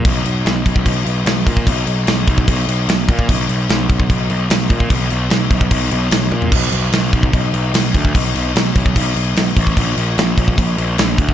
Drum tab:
CC |x-x-x-x-x-x-x-x-|x-x-x-x-x-x-x-x-|x-x-x-x-x-x-x-x-|x-x-x-x-x-x-x---|
SD |----o-------o---|----o-------o---|----o-------o---|----o-------o---|
T1 |----------------|----------------|----------------|--------------o-|
FT |----------------|----------------|----------------|---------------o|
BD |o-----ooo-----oo|o-----ooo-----oo|o-----ooo-----oo|o-----ooo-------|

CC |x-x-x-x-x-x-x-x-|x-x-x-x-x-x-x-x-|x-x-x-x-x-x-x-x-|
SD |----o-------o---|----o-------o---|----o-------o---|
T1 |----------------|----------------|----------------|
FT |----------------|----------------|----------------|
BD |o-----ooo-----oo|o-----ooo-----oo|o-----ooo-----oo|